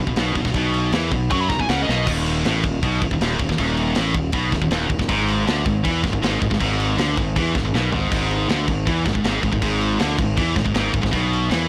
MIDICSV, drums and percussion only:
0, 0, Header, 1, 2, 480
1, 0, Start_track
1, 0, Tempo, 378072
1, 697, Time_signature, 4, 2, 24, 8
1, 14834, End_track
2, 0, Start_track
2, 0, Title_t, "Drums"
2, 89, Note_on_c, 9, 36, 86
2, 203, Note_on_c, 9, 49, 77
2, 216, Note_off_c, 9, 36, 0
2, 218, Note_on_c, 9, 38, 111
2, 330, Note_off_c, 9, 49, 0
2, 345, Note_off_c, 9, 38, 0
2, 448, Note_on_c, 9, 49, 66
2, 450, Note_on_c, 9, 36, 85
2, 571, Note_off_c, 9, 36, 0
2, 571, Note_on_c, 9, 36, 84
2, 575, Note_off_c, 9, 49, 0
2, 584, Note_on_c, 9, 38, 32
2, 684, Note_on_c, 9, 49, 86
2, 691, Note_off_c, 9, 36, 0
2, 691, Note_on_c, 9, 36, 100
2, 711, Note_off_c, 9, 38, 0
2, 811, Note_off_c, 9, 49, 0
2, 817, Note_off_c, 9, 36, 0
2, 936, Note_on_c, 9, 49, 64
2, 1063, Note_off_c, 9, 49, 0
2, 1174, Note_on_c, 9, 49, 91
2, 1189, Note_on_c, 9, 38, 114
2, 1301, Note_off_c, 9, 49, 0
2, 1316, Note_off_c, 9, 38, 0
2, 1413, Note_on_c, 9, 49, 63
2, 1417, Note_on_c, 9, 36, 88
2, 1540, Note_off_c, 9, 49, 0
2, 1544, Note_off_c, 9, 36, 0
2, 1659, Note_on_c, 9, 36, 105
2, 1659, Note_on_c, 9, 49, 85
2, 1786, Note_off_c, 9, 36, 0
2, 1786, Note_off_c, 9, 49, 0
2, 1899, Note_on_c, 9, 49, 61
2, 1902, Note_on_c, 9, 36, 95
2, 1914, Note_on_c, 9, 38, 35
2, 2025, Note_off_c, 9, 36, 0
2, 2025, Note_on_c, 9, 36, 85
2, 2026, Note_off_c, 9, 49, 0
2, 2041, Note_off_c, 9, 38, 0
2, 2141, Note_on_c, 9, 49, 79
2, 2152, Note_off_c, 9, 36, 0
2, 2156, Note_on_c, 9, 38, 119
2, 2268, Note_off_c, 9, 49, 0
2, 2283, Note_off_c, 9, 38, 0
2, 2404, Note_on_c, 9, 38, 66
2, 2531, Note_off_c, 9, 38, 0
2, 2624, Note_on_c, 9, 49, 87
2, 2624, Note_on_c, 9, 57, 127
2, 2628, Note_on_c, 9, 36, 114
2, 2750, Note_off_c, 9, 49, 0
2, 2750, Note_off_c, 9, 57, 0
2, 2755, Note_off_c, 9, 36, 0
2, 2871, Note_on_c, 9, 49, 66
2, 2998, Note_off_c, 9, 49, 0
2, 3109, Note_on_c, 9, 49, 94
2, 3124, Note_on_c, 9, 38, 114
2, 3236, Note_off_c, 9, 49, 0
2, 3251, Note_off_c, 9, 38, 0
2, 3344, Note_on_c, 9, 49, 70
2, 3350, Note_on_c, 9, 36, 96
2, 3471, Note_off_c, 9, 49, 0
2, 3477, Note_off_c, 9, 36, 0
2, 3587, Note_on_c, 9, 49, 79
2, 3591, Note_on_c, 9, 36, 107
2, 3714, Note_off_c, 9, 49, 0
2, 3718, Note_off_c, 9, 36, 0
2, 3832, Note_on_c, 9, 36, 102
2, 3838, Note_on_c, 9, 49, 68
2, 3950, Note_off_c, 9, 36, 0
2, 3950, Note_on_c, 9, 36, 86
2, 3965, Note_off_c, 9, 49, 0
2, 4073, Note_on_c, 9, 49, 85
2, 4077, Note_off_c, 9, 36, 0
2, 4088, Note_on_c, 9, 38, 103
2, 4200, Note_off_c, 9, 49, 0
2, 4215, Note_off_c, 9, 38, 0
2, 4310, Note_on_c, 9, 36, 91
2, 4313, Note_on_c, 9, 49, 61
2, 4432, Note_off_c, 9, 36, 0
2, 4432, Note_on_c, 9, 36, 85
2, 4440, Note_off_c, 9, 49, 0
2, 4451, Note_on_c, 9, 38, 33
2, 4548, Note_on_c, 9, 49, 87
2, 4549, Note_off_c, 9, 36, 0
2, 4549, Note_on_c, 9, 36, 108
2, 4578, Note_off_c, 9, 38, 0
2, 4675, Note_off_c, 9, 49, 0
2, 4676, Note_off_c, 9, 36, 0
2, 4788, Note_on_c, 9, 49, 73
2, 4915, Note_off_c, 9, 49, 0
2, 5013, Note_on_c, 9, 49, 89
2, 5029, Note_on_c, 9, 38, 119
2, 5140, Note_off_c, 9, 49, 0
2, 5156, Note_off_c, 9, 38, 0
2, 5258, Note_on_c, 9, 49, 62
2, 5263, Note_on_c, 9, 36, 106
2, 5385, Note_off_c, 9, 49, 0
2, 5390, Note_off_c, 9, 36, 0
2, 5487, Note_on_c, 9, 49, 82
2, 5500, Note_on_c, 9, 36, 109
2, 5614, Note_off_c, 9, 49, 0
2, 5626, Note_off_c, 9, 36, 0
2, 5737, Note_on_c, 9, 49, 59
2, 5742, Note_on_c, 9, 36, 89
2, 5753, Note_on_c, 9, 38, 33
2, 5861, Note_off_c, 9, 36, 0
2, 5861, Note_on_c, 9, 36, 90
2, 5864, Note_off_c, 9, 49, 0
2, 5880, Note_off_c, 9, 38, 0
2, 5975, Note_on_c, 9, 49, 81
2, 5988, Note_off_c, 9, 36, 0
2, 5990, Note_on_c, 9, 38, 110
2, 6102, Note_off_c, 9, 49, 0
2, 6117, Note_off_c, 9, 38, 0
2, 6217, Note_on_c, 9, 49, 55
2, 6220, Note_on_c, 9, 36, 84
2, 6340, Note_off_c, 9, 36, 0
2, 6340, Note_on_c, 9, 36, 79
2, 6344, Note_off_c, 9, 49, 0
2, 6355, Note_on_c, 9, 38, 33
2, 6462, Note_off_c, 9, 36, 0
2, 6462, Note_on_c, 9, 36, 103
2, 6462, Note_on_c, 9, 49, 87
2, 6482, Note_off_c, 9, 38, 0
2, 6589, Note_off_c, 9, 36, 0
2, 6589, Note_off_c, 9, 49, 0
2, 6708, Note_on_c, 9, 49, 66
2, 6835, Note_off_c, 9, 49, 0
2, 6949, Note_on_c, 9, 49, 79
2, 6965, Note_on_c, 9, 38, 122
2, 7076, Note_off_c, 9, 49, 0
2, 7091, Note_off_c, 9, 38, 0
2, 7184, Note_on_c, 9, 36, 98
2, 7187, Note_on_c, 9, 49, 61
2, 7311, Note_off_c, 9, 36, 0
2, 7314, Note_off_c, 9, 49, 0
2, 7426, Note_on_c, 9, 36, 103
2, 7434, Note_on_c, 9, 49, 87
2, 7553, Note_off_c, 9, 36, 0
2, 7560, Note_off_c, 9, 49, 0
2, 7665, Note_on_c, 9, 36, 93
2, 7679, Note_on_c, 9, 49, 62
2, 7694, Note_on_c, 9, 38, 31
2, 7784, Note_off_c, 9, 36, 0
2, 7784, Note_on_c, 9, 36, 82
2, 7805, Note_off_c, 9, 49, 0
2, 7821, Note_off_c, 9, 38, 0
2, 7911, Note_off_c, 9, 36, 0
2, 7913, Note_on_c, 9, 49, 86
2, 7928, Note_on_c, 9, 38, 123
2, 8040, Note_off_c, 9, 49, 0
2, 8055, Note_off_c, 9, 38, 0
2, 8148, Note_on_c, 9, 36, 89
2, 8160, Note_on_c, 9, 49, 58
2, 8266, Note_off_c, 9, 36, 0
2, 8266, Note_on_c, 9, 36, 79
2, 8287, Note_off_c, 9, 49, 0
2, 8290, Note_on_c, 9, 38, 33
2, 8386, Note_off_c, 9, 36, 0
2, 8386, Note_on_c, 9, 36, 99
2, 8390, Note_on_c, 9, 49, 94
2, 8417, Note_off_c, 9, 38, 0
2, 8513, Note_off_c, 9, 36, 0
2, 8517, Note_off_c, 9, 49, 0
2, 8630, Note_on_c, 9, 49, 69
2, 8757, Note_off_c, 9, 49, 0
2, 8867, Note_on_c, 9, 49, 94
2, 8882, Note_on_c, 9, 38, 108
2, 8993, Note_off_c, 9, 49, 0
2, 9009, Note_off_c, 9, 38, 0
2, 9108, Note_on_c, 9, 36, 95
2, 9119, Note_on_c, 9, 49, 67
2, 9235, Note_off_c, 9, 36, 0
2, 9246, Note_off_c, 9, 49, 0
2, 9347, Note_on_c, 9, 36, 111
2, 9352, Note_on_c, 9, 49, 86
2, 9474, Note_off_c, 9, 36, 0
2, 9479, Note_off_c, 9, 49, 0
2, 9586, Note_on_c, 9, 36, 99
2, 9593, Note_on_c, 9, 49, 62
2, 9608, Note_on_c, 9, 38, 36
2, 9713, Note_off_c, 9, 36, 0
2, 9720, Note_off_c, 9, 49, 0
2, 9735, Note_off_c, 9, 38, 0
2, 9843, Note_on_c, 9, 38, 69
2, 9970, Note_off_c, 9, 38, 0
2, 10061, Note_on_c, 9, 43, 86
2, 10188, Note_off_c, 9, 43, 0
2, 10306, Note_on_c, 9, 36, 113
2, 10315, Note_on_c, 9, 49, 105
2, 10433, Note_off_c, 9, 36, 0
2, 10442, Note_off_c, 9, 49, 0
2, 10547, Note_on_c, 9, 49, 61
2, 10674, Note_off_c, 9, 49, 0
2, 10784, Note_on_c, 9, 49, 80
2, 10799, Note_on_c, 9, 38, 117
2, 10911, Note_off_c, 9, 49, 0
2, 10926, Note_off_c, 9, 38, 0
2, 11019, Note_on_c, 9, 36, 91
2, 11020, Note_on_c, 9, 49, 66
2, 11146, Note_off_c, 9, 36, 0
2, 11147, Note_off_c, 9, 49, 0
2, 11261, Note_on_c, 9, 36, 111
2, 11266, Note_on_c, 9, 49, 85
2, 11388, Note_off_c, 9, 36, 0
2, 11393, Note_off_c, 9, 49, 0
2, 11499, Note_on_c, 9, 36, 99
2, 11506, Note_on_c, 9, 49, 63
2, 11521, Note_on_c, 9, 38, 32
2, 11619, Note_off_c, 9, 36, 0
2, 11619, Note_on_c, 9, 36, 79
2, 11633, Note_off_c, 9, 49, 0
2, 11648, Note_off_c, 9, 38, 0
2, 11735, Note_on_c, 9, 49, 77
2, 11746, Note_off_c, 9, 36, 0
2, 11750, Note_on_c, 9, 38, 121
2, 11862, Note_off_c, 9, 49, 0
2, 11877, Note_off_c, 9, 38, 0
2, 11974, Note_on_c, 9, 36, 82
2, 11975, Note_on_c, 9, 49, 65
2, 12094, Note_off_c, 9, 36, 0
2, 12094, Note_on_c, 9, 36, 89
2, 12102, Note_off_c, 9, 49, 0
2, 12214, Note_off_c, 9, 36, 0
2, 12214, Note_on_c, 9, 36, 100
2, 12216, Note_on_c, 9, 49, 88
2, 12341, Note_off_c, 9, 36, 0
2, 12343, Note_off_c, 9, 49, 0
2, 12454, Note_on_c, 9, 49, 65
2, 12581, Note_off_c, 9, 49, 0
2, 12690, Note_on_c, 9, 49, 97
2, 12705, Note_on_c, 9, 38, 116
2, 12816, Note_off_c, 9, 49, 0
2, 12832, Note_off_c, 9, 38, 0
2, 12932, Note_on_c, 9, 36, 98
2, 12934, Note_on_c, 9, 49, 72
2, 13059, Note_off_c, 9, 36, 0
2, 13061, Note_off_c, 9, 49, 0
2, 13172, Note_on_c, 9, 36, 110
2, 13176, Note_on_c, 9, 49, 88
2, 13299, Note_off_c, 9, 36, 0
2, 13303, Note_off_c, 9, 49, 0
2, 13408, Note_on_c, 9, 49, 66
2, 13409, Note_on_c, 9, 36, 102
2, 13424, Note_on_c, 9, 38, 35
2, 13529, Note_off_c, 9, 36, 0
2, 13529, Note_on_c, 9, 36, 93
2, 13535, Note_off_c, 9, 49, 0
2, 13551, Note_off_c, 9, 38, 0
2, 13643, Note_on_c, 9, 49, 77
2, 13656, Note_off_c, 9, 36, 0
2, 13658, Note_on_c, 9, 38, 117
2, 13770, Note_off_c, 9, 49, 0
2, 13785, Note_off_c, 9, 38, 0
2, 13886, Note_on_c, 9, 49, 56
2, 13887, Note_on_c, 9, 36, 96
2, 14007, Note_off_c, 9, 36, 0
2, 14007, Note_on_c, 9, 36, 82
2, 14013, Note_off_c, 9, 49, 0
2, 14027, Note_on_c, 9, 38, 32
2, 14128, Note_on_c, 9, 49, 87
2, 14129, Note_off_c, 9, 36, 0
2, 14129, Note_on_c, 9, 36, 105
2, 14154, Note_off_c, 9, 38, 0
2, 14255, Note_off_c, 9, 49, 0
2, 14256, Note_off_c, 9, 36, 0
2, 14386, Note_on_c, 9, 49, 62
2, 14513, Note_off_c, 9, 49, 0
2, 14612, Note_on_c, 9, 49, 81
2, 14627, Note_on_c, 9, 38, 118
2, 14739, Note_off_c, 9, 49, 0
2, 14754, Note_off_c, 9, 38, 0
2, 14834, End_track
0, 0, End_of_file